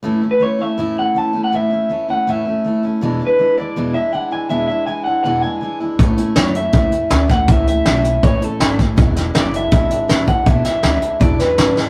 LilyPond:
<<
  \new Staff \with { instrumentName = "Clean electric guitar" } { \time 4/4 \key a \major \tempo 4 = 161 \tuplet 3/2 { r4 b'8 } cis''8 e''4 fis''8 \tuplet 3/2 { a''4 fis''8 } | e''4. fis''8 e''4. r8 | \tuplet 3/2 { r4 b'8~ } b'8 d''4 e''8 fis''8 gis''8 | e''8 e''8 gis''8 fis''8 fis''8 gis''4 r8 |
r4 cis''8 e''2 fis''8 | e''8 e''4. cis''8 a'4 r8 | r4 d''8 e''2 fis''8 | e''8 e''4. d''8 b'4 r8 | }
  \new Staff \with { instrumentName = "Steel-string acoustic guitar" } { \time 4/4 \key a \major <a, e a cis' e'>8 <a cis' e'>8 <e a cis' e'>8 <a cis' e'>8 <a, e a cis' e'>8 <a cis' e'>8 <e a cis' e'>8 <a cis' e'>8 | <a, e a cis' e'>8 <a cis' e'>8 <e a cis' e'>8 <a cis' e'>8 <a, e a cis' e'>8 <a cis' e'>8 <e a cis' e'>8 <a cis' e'>8 | <e, b, e gis d' e'>8 <e gis d' e'>8 <e gis d' e'>8 <e gis d' e'>8 <e, b, e gis d' e'>8 <e gis d' e'>8 <e gis d' e'>8 <e gis d' e'>8 | <e, b, e gis d' e'>8 <e gis d' e'>8 <e gis d' e'>8 <e gis d' e'>8 <e, b, e gis d' e'>8 <e gis d' e'>8 <e gis d' e'>8 <e gis d' e'>8 |
<a, e a cis' e'>8 <a cis' e'>8 e8 <a cis' e'>8 <a, e a cis' e'>8 <a cis' e'>8 <e a cis' e'>8 <a cis' e'>8 | <a, e a cis' e'>8 <a cis' e'>8 <e a cis' e'>8 <a cis' e'>8 <a, e a cis' e'>8 <a cis' e'>8 <e a cis' e'>8 <a cis' e'>8 | <e, b, e gis d' e'>8 <e gis d' e'>8 <e gis d' e'>8 <e gis d' e'>8 <e, b, e gis d' e'>8 <e gis d' e'>8 <e gis d' e'>8 <e gis d' e'>8 | <e, b, e gis d' e'>8 <e gis d' e'>8 <e gis d' e'>8 <e gis d' e'>8 <e, b, e gis d' e'>8 <e gis d' e'>8 <e gis d' e'>8 <e gis d' e'>8 | }
  \new Staff \with { instrumentName = "Upright bass" } { \clef bass \time 4/4 \key a \major r1 | r1 | r1 | r1 |
a,4 fis,4 e,4 d,4 | cis,4 b,,4 a,,4 gis,,4 | e,,4 fis,,4 gis,,4 a,,4 | b,,8 r8 d,8 r8 e,4 gis,4 | }
  \new DrumStaff \with { instrumentName = "Drums" } \drummode { \time 4/4 r4 r4 r4 r4 | r4 r4 r4 r4 | r4 r4 r4 r4 | r4 r4 r4 r4 |
<hh bd>8 hh8 <hh sn>8 hh8 <hh bd>8 hh8 <hh sn>8 <hh bd sn>8 | <hh bd>8 hh8 <hh sn>8 hh8 <hh bd>8 hh8 <hh sn>8 <hh bd sn>8 | <hh bd>8 <hh sn>8 <hh sn>8 hh8 <hh bd>8 hh8 <hh sn>8 <hh bd>8 | <hh bd>8 <hh sn>8 <hh sn>8 hh8 <hh bd>8 <hh sn>8 <hh sn>8 sn8 | }
>>